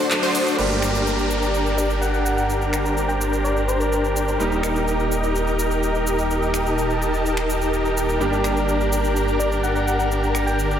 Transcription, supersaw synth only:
0.23 0.56 D4 loud
0.23 0.56 F#4 medium
0.23 0.56 C5 loud
0.59 4.37 D4 medium
0.59 4.37 G4 medium
0.59 4.37 A#4 medium
4.39 8.18 D#4 medium
4.39 8.18 G4 medium
4.39 8.18 A#4 medium
8.20 10.80 D4 medium
8.20 10.80 G4 medium
8.20 10.80 A#4 medium

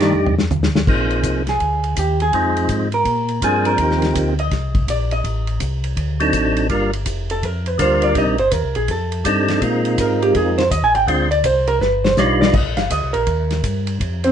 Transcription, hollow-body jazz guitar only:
0.01 0.13 D#3 medium
0.01 0.13 A3 medium
0.01 0.13 D4 medium
1.49 1.94 G#4 medium
1.99 2.20 G4 medium
2.22 2.67 G#4 medium
2.94 3.39 A#4 medium
3.44 3.66 G#4 medium
3.66 4.12 A#4 medium
4.40 4.85 D#5 loud
4.90 5.12 D5 medium
5.12 5.58 D#5 medium
7.31 7.45 A4 medium
7.45 7.68 A#4 medium
7.68 7.80 B4 medium
7.82 8.03 C5 medium
8.04 8.16 D5 loud
8.18 8.40 D#5 loud
8.39 8.53 C5 medium
8.53 8.75 A#4 medium
8.76 8.89 G#4 medium
8.91 9.24 A4 medium
10.01 10.22 A#4 medium
10.22 10.35 G4 medium
10.36 10.58 G#4 medium
10.58 10.71 C5 loud
10.71 10.83 D#5 medium
10.84 10.95 G#5 loud
10.96 11.08 G5 loud
11.08 11.31 F5 loud
11.31 11.44 D5 loud
11.46 11.68 C5 medium
11.68 11.81 A#4 loud
11.81 12.04 B4 medium
12.04 12.17 C5 loud
12.19 12.41 C#5 medium
12.41 12.54 D5 medium
12.54 12.77 D#5 medium
12.77 12.90 F5 medium
12.92 13.14 D#5 medium
13.13 13.96 A#4 medium
14.24 14.32 C4 medium
14.24 14.32 C5 medium

